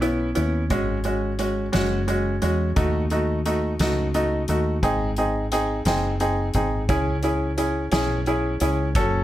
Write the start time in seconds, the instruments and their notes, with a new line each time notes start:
Already playing: fretless electric bass B1
0.01 grand piano B3 C#4 E4, closed hi-hat
0.35 fretless electric bass D#2, grand piano B3 C#4 E4, closed hi-hat
0.70 fretless electric bass G#1, grand piano G#3 C#4 F#4, kick, closed hi-hat
1.04 grand piano G#3 C#4 F#4, closed hi-hat
1.39 grand piano G#3 C#4 F#4, closed hi-hat
1.73 fretless electric bass F#1, grand piano G#3 C#4 F#4, snare, closed hi-hat
2.08 grand piano G#3 C#4 F#4, closed hi-hat
2.42 fretless electric bass E2, grand piano G#3 C#4 F#4, closed hi-hat
2.76 fretless electric bass D#2, grand piano A3 D#4 F#4, kick, closed hi-hat
3.10 grand piano A3 D#4 F#4, closed hi-hat
3.46 grand piano A3 D#4 F#4, closed hi-hat
3.79 fretless electric bass C#2, grand piano A3 D#4 F#4, snare, closed hi-hat
4.14 grand piano A3 D#4 F#4, closed hi-hat
4.48 fretless electric bass D#2, grand piano A3 D#4 F#4, closed hi-hat
4.83 fretless electric bass G#1, grand piano C4 D#4 G#4, kick, closed hi-hat
5.16 grand piano C4 D#4 G#4, closed hi-hat
5.52 grand piano C4 D#4 G#4, closed hi-hat
5.85 fretless electric bass F#1, grand piano C4 D#4 G#4, snare, closed hi-hat
6.20 grand piano C4 D#4 G#4, closed hi-hat
6.54 fretless electric bass G#1, grand piano C4 D#4 G#4, kick, closed hi-hat
6.89 fretless electric bass C#2, grand piano C#4 E4 G#4, kick, closed hi-hat
7.23 grand piano C#4 E4 G#4, closed hi-hat
7.58 grand piano C#4 E4 G#4, closed hi-hat
7.92 fretless electric bass B1, grand piano C#4 E4 G#4, snare, closed hi-hat
8.26 grand piano C#4 E4 G#4, closed hi-hat
8.60 fretless electric bass C#2, grand piano C#4 E4 G#4, closed hi-hat
8.95 fretless electric bass F#1, grand piano C#4 F#4 A4, kick, closed hi-hat